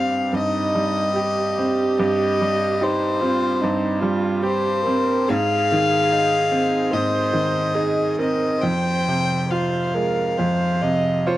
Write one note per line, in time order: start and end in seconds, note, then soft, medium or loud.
0.00 0.29 G2 medium
0.00 0.75 G3 soft
0.00 0.59 C4 soft
0.00 0.17 G4 soft
0.00 0.36 F5 loud
0.33 1.95 G2 medium
0.33 1.12 D#4 medium
0.33 2.00 D#5 medium
0.75 1.42 G3 medium
1.16 1.83 G4 medium
1.16 2.83 G4 medium
1.59 2.25 C4 medium
1.99 3.59 G2 medium
1.99 2.84 D#5 loud
2.42 3.07 G3 medium
2.81 3.23 D#4 medium
2.81 3.47 G4 medium
2.81 4.04 C5 medium
3.21 3.87 C4 medium
3.21 3.63 F4 medium
3.61 5.26 G2 medium
3.61 4.02 D#4 medium
4.01 4.69 G3 medium
4.01 4.44 F4 medium
4.43 4.85 G4 medium
4.43 5.12 G4 medium
4.43 5.31 C5 loud
4.86 5.30 C4 medium
4.86 5.29 A#4 medium
5.28 6.89 G#2 medium
5.28 6.93 G#4 medium
5.28 6.95 F5 loud
5.72 6.37 D#3 medium
6.12 6.76 D#4 medium
6.52 7.17 C4 medium
6.92 8.59 G#2 medium
6.92 7.76 C5 medium
6.92 8.19 D#5 medium
7.33 8.01 D#3 medium
7.75 8.45 D#4 medium
7.75 8.20 G#4 medium
8.18 8.63 C4 soft
8.18 8.61 A#4 medium
8.18 8.63 D#5 medium
8.61 10.35 F2 medium
8.61 9.40 C5 medium
8.61 9.53 G5 medium
9.08 9.78 C3 soft
9.49 10.22 F4 soft
9.49 9.96 C5 medium
9.49 11.38 F5 medium
9.94 10.65 G#3 soft
9.94 10.39 A#4 medium
10.37 11.38 F2 medium
10.37 10.83 C5 medium
10.82 11.38 C3 soft
10.82 11.28 D#5 medium
11.27 11.38 F4 medium
11.27 11.38 C5 medium
11.27 11.38 C#5 medium